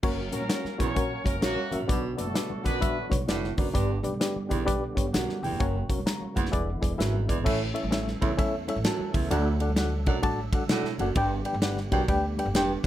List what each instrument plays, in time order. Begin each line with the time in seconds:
0.03 upright bass F#1, baritone saxophone F#2, tonewheel organ F#3 A#3 C#4 A#4, reed electric piano C#4 F#4 A#4 C#5, kick, crash, muted conga
0.32 upright bass A#1, horn section A#3 C#4 F#4 A#4, reed electric piano C#4 F#4 A#4 C#5, closed hi-hat, muted conga
0.42 high conga
0.49 reed electric piano C#4 F#4 A#4 C#5, snare, closed hi-hat, muted conga
0.65 muted upright bass stroke, snare, high conga
0.78 upright bass A#1, baritone saxophone E2, reed electric piano C#4 F#4 A#4 C#5, horn section C#4 F#4 A#4 C#5, kick, closed hi-hat, low conga
0.95 reed electric piano C#4 F#4 A#4 C#5, kick, closed hi-hat, muted conga, high conga
1.24 upright bass F#1, horn section A#3 C#4 F#4 A#4, reed electric piano C#4 F#4 A#4 C#5, kick, closed hi-hat, muted conga, high conga
1.42 upright bass A#1, baritone saxophone F#2, horn section F#3 A#3 C#4 F#4, reed electric piano C#4 F#4 A#4 C#5, snare, closed hi-hat
1.56 high conga
1.71 upright bass A1, baritone saxophone F#2, reed electric piano C#4 F#4 A#4 E5, closed hi-hat, muted conga, low conga
1.80 upright bass A#1
1.88 upright bass B1, reed electric piano B2 D4 F#4 B4 D5, baritone saxophone B2, tonewheel organ D3 B3 F#4, kick, closed hi-hat, muted conga
2.17 upright bass F#1, horn section A3 D4 F#4 A4, reed electric piano D4 F#4 B4 D5, closed hi-hat, muted conga
2.27 high conga
2.34 reed electric piano D4 F#4 B4 D5, snare, closed hi-hat, muted conga
2.50 muted upright bass stroke, high conga
2.64 upright bass A#1, baritone saxophone F#2, horn section B3 D4 F#4 B4, reed electric piano D4 F#4 B4 D5, kick, closed hi-hat, muted conga, low conga
2.80 reed electric piano D4 F#4 B4 E5, kick, closed hi-hat, high conga
3.10 upright bass B1, reed electric piano D4 F#4 B4 C#5, kick, closed hi-hat, high conga
3.28 upright bass F1, baritone saxophone A2, reed electric piano D4 F#4 B4 D5, snare, closed hi-hat
3.43 snare, high conga
3.57 upright bass F#1, baritone saxophone F#2, reed electric piano D4 F#4 B4 D5, kick, open hi-hat, muted conga, low conga
3.74 upright bass G1, reed electric piano G2 D4 G4 B4 D5, baritone saxophone G2, tonewheel organ G3 G4, kick, closed hi-hat, muted conga
4.03 upright bass B1, reed electric piano D4 G4 B4 D5, closed hi-hat
4.13 high conga
4.20 reed electric piano D4 G4 B4 D5, snare, closed hi-hat
4.36 muted upright bass stroke, high conga
4.49 upright bass B1, baritone saxophone E2, reed electric piano D4 G4 B4 D5, kick, closed hi-hat, muted conga, low conga
4.66 reed electric piano D4 G4 B4 D5, kick, closed hi-hat, muted conga, high conga
4.95 upright bass G1, reed electric piano D4 G4 B4 C#5, kick, closed hi-hat, high conga
5.14 upright bass B1, baritone saxophone F#2, reed electric piano F#5, snare, closed hi-hat
5.29 snare, high conga
5.43 upright bass E1, baritone saxophone E2, reed electric piano G5, open hi-hat, low conga
5.52 upright bass F1
5.60 upright bass F#1, baritone saxophone F#2, tonewheel organ C#3 F#3 A#3 F#4, reed electric piano C#4 F#4 A#4 C#5, kick, closed hi-hat, muted conga
5.89 upright bass E1, reed electric piano C#4 F#4 A#4 C#5, kick, closed hi-hat, muted conga
5.99 high conga
6.06 reed electric piano A#5, snare, closed hi-hat
6.21 muted upright bass stroke, high conga
6.36 upright bass F#1, baritone saxophone E2, reed electric piano F#5, kick, closed hi-hat, muted conga, high conga, low conga
6.46 snare
6.52 upright bass E1, tonewheel organ D3 G#3 B3 E4, reed electric piano E3 E4 G#4 B4 D5, kick, closed hi-hat, high conga
6.81 upright bass E1, reed electric piano E4 G#4 B4 D5, kick, closed hi-hat, high conga
6.98 upright bass G#1, baritone saxophone F#2, reed electric piano E4 G#4 B4 E5, snare, closed hi-hat
7.14 high conga
7.28 baritone saxophone E2, reed electric piano E4 G#4 B4 D5, kick, closed hi-hat, low conga
7.38 upright bass G#1
7.44 upright bass A1, reed electric piano A2 C#4 E4 A4 C#5 E5, baritone saxophone A2, tonewheel organ E3 A3 C#4 A4, kick, crash, muted conga, low conga
7.74 reed electric piano C#4 E4 A4 C#5 E5, ride, muted conga
7.83 upright bass A1, high conga
7.91 reed electric piano C#4 E4 A4 C#5 E5, snare, ride
8.08 snare, high conga
8.21 upright bass C#2, baritone saxophone E2, reed electric piano C#4 E4 A4 C#5 E5, kick, ride, muted conga, high conga, low conga
8.37 upright bass E2, reed electric piano C#4 E4 A4 C#5 E5, kick, ride, muted conga, high conga
8.68 reed electric piano C#4 E4 A4 C#5 E5, ride, muted conga, high conga
8.76 upright bass A1
8.84 baritone saxophone F#2, reed electric piano A5, snare, ride
8.99 muted upright bass stroke, high conga
9.14 upright bass C#2, baritone saxophone E2, reed electric piano E5, kick, open hi-hat, ride, low conga
9.31 upright bass D2, baritone saxophone D2, reed electric piano D3 D4 F#4 A4 D5 F#5, tonewheel organ F#3 D4, hi-hat pedal, ride, muted conga, low conga
9.60 reed electric piano D4 F#4 A4 D5 F#5, ride
9.69 high conga
9.76 reed electric piano D4 F#4 A4 D5 F#5, snare, ride
9.93 high conga
10.06 upright bass B1, baritone saxophone F#2, reed electric piano D4 F#4 A4 D5 F#5, kick, ride, high conga, low conga
10.22 upright bass A1, reed electric piano D4 F#4 A4 D5 A5, kick, ride, muted conga, high conga
10.52 upright bass D3, reed electric piano D4 F#4 A4 D5 F#5, kick, ride, muted conga, high conga
10.69 baritone saxophone A2, upright bass B2, reed electric piano D4 F#4 A4 D5 F#5, snare, ride, muted conga
10.84 snare, high conga
10.98 upright bass F#1, baritone saxophone F#2, reed electric piano D4 F#4 A4 D5 F#5, ride, muted conga, low conga
11.15 upright bass G1, baritone saxophone G2, reed electric piano G2 D4 G4 B4 D5 G5, tonewheel organ D3 G3 B3 G4, kick, ride, muted conga, low conga
11.44 reed electric piano D4 G4 B4 D5 G5, ride, muted conga
11.53 upright bass G1, high conga
11.62 reed electric piano D4 G4 B4 D5 F#5, snare, ride
11.77 snare, high conga
11.92 upright bass B1, baritone saxophone F#2, reed electric piano D4 G4 B4 D5 G5, kick, ride, muted conga, high conga, low conga
12.08 upright bass D2, reed electric piano D4 G4 B4 D5 G5, kick, ride, high conga
12.37 reed electric piano D4 G4 B4 D5 G5, ride, muted conga, high conga
12.46 upright bass G1
12.54 upright bass E1, baritone saxophone G2, reed electric piano D4 G4 B4 D5 G5, snare, ride
12.68 high conga
12.83 upright bass F1, low conga